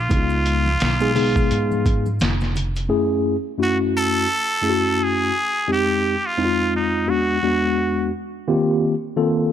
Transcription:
0.00 2.20 F4 loud
0.09 0.77 C#2 loud
0.09 0.68 G#3 medium
0.09 0.68 B3 medium
0.09 0.68 D#4 medium
0.09 0.18 E4 medium
0.09 kick medium
0.09 closed hi-hat medium
0.09 maracas medium
0.17 0.72 F4 medium
0.30 maracas soft
0.46 closed hi-hat medium
0.46 maracas soft
0.66 high conga soft
0.66 maracas soft
0.80 1.47 B1 medium
0.80 snare loud
0.80 closed hi-hat medium
0.80 maracas soft
1.00 1.10 G#3 medium
1.00 1.10 B3 medium
1.00 1.10 D#4 medium
1.00 1.10 G#4 medium
1.00 maracas soft
1.15 2.06 G#3 medium
1.15 2.07 B3 medium
1.15 2.07 D#4 medium
1.15 2.07 G#4 medium
1.15 open hi-hat soft
1.15 low conga medium
1.15 maracas soft
1.36 kick medium
1.36 maracas soft
1.51 2.17 G#2 medium
1.51 closed hi-hat medium
1.51 maracas medium
1.71 high conga medium
1.71 maracas soft
1.85 kick medium
1.85 closed hi-hat medium
1.85 maracas soft
2.06 high conga medium
2.06 maracas soft
2.20 2.87 F1 medium
2.20 snare loud
2.20 closed hi-hat loud
2.20 maracas medium
2.41 snare soft
2.41 maracas soft
2.55 closed hi-hat medium
2.55 low conga medium
2.55 maracas soft
2.76 closed hi-hat soft
2.76 maracas soft
2.89 3.35 F#2 medium
2.89 3.35 A3 medium
2.89 3.35 C#4 medium
2.89 3.36 E4 medium
2.89 3.36 G#4 medium
3.58 4.26 F#2 medium
3.58 4.26 A3 medium
3.58 4.26 C#4 medium
3.58 4.26 E4 medium
3.58 4.27 F#4 medium
3.62 3.77 F#4 medium
3.96 5.05 A4 loud
4.62 5.30 F#2 medium
4.62 5.30 A3 medium
4.62 5.30 C#4 medium
4.62 5.31 E4 medium
4.62 4.71 G#4 medium
4.70 5.34 F#4 medium
5.03 5.71 G#4 loud
5.68 6.14 F2 medium
5.68 6.14 G#3 medium
5.68 6.14 C4 medium
5.68 6.14 D#4 medium
5.68 6.15 G4 medium
5.72 6.28 G4 loud
6.26 6.74 F4 loud
6.37 7.05 F2 medium
6.37 7.05 G#3 medium
6.37 7.05 C4 medium
6.37 7.05 D#4 medium
6.37 6.46 E4 medium
6.45 7.09 F4 medium
6.76 7.11 D#4 medium
7.07 7.37 E2 medium
7.07 7.37 G#3 medium
7.07 7.37 B3 medium
7.07 7.37 D4 medium
7.07 7.37 F#4 medium
7.07 8.13 F#4 medium
7.43 8.10 E2 medium
7.43 8.10 G#3 medium
7.43 8.10 B3 medium
7.43 8.10 D4 medium
7.43 8.10 F#4 medium
8.48 8.94 D#3 medium
8.48 8.94 A#3 medium
8.48 8.94 C4 medium
8.48 8.94 F4 medium
8.48 8.94 G4 medium
9.16 9.52 D#3 medium
9.16 9.52 A#3 medium
9.16 9.52 C4 medium
9.16 9.52 F4 medium
9.16 9.52 A4 loud

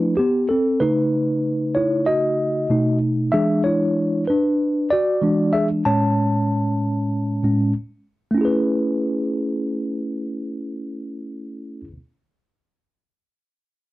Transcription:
0.00 0.14 F3 soft
0.00 0.14 A3 soft
0.00 0.14 D4 medium
0.00 0.15 E4 soft
0.00 0.20 B4 medium
0.17 0.48 B3 medium
0.17 0.47 G4 medium
0.49 0.79 C4 medium
0.49 0.81 A4 medium
0.80 2.66 C#3 medium
0.80 2.66 A3 soft
0.80 2.67 D#4 medium
0.80 1.78 B4 medium
1.75 2.05 E4 medium
1.75 2.04 C#5 medium
2.06 2.98 F#4 medium
2.06 2.97 D#5 medium
2.70 3.30 B2 medium
2.70 3.30 A3 soft
2.70 3.31 D#4 medium
3.32 4.24 E3 soft
3.32 4.24 G#3 soft
3.32 4.24 D4 medium
3.32 3.63 G#4 medium
3.32 3.62 E5 medium
3.64 4.25 E4 medium
3.64 4.24 C#5 medium
4.27 4.88 D4 medium
4.27 4.93 B4 medium
4.90 5.51 F#4 medium
4.90 5.56 D5 medium
5.22 5.82 E3 medium
5.22 5.83 G#3 soft
5.22 5.83 D4 medium
5.53 5.68 G#4 medium
5.53 5.67 E5 medium
5.85 7.42 A2 soft
5.85 7.43 G#3 soft
5.85 7.43 C#4 medium
5.85 7.72 C#5 medium
5.85 7.71 A5 medium
7.43 7.72 A2 soft
7.43 7.72 G#3 soft
7.43 7.72 C#4 soft
8.31 11.80 A3 medium
8.31 11.84 C#4 medium
8.38 11.87 E4 medium
8.38 11.90 G#4 medium
8.45 11.94 B4 medium

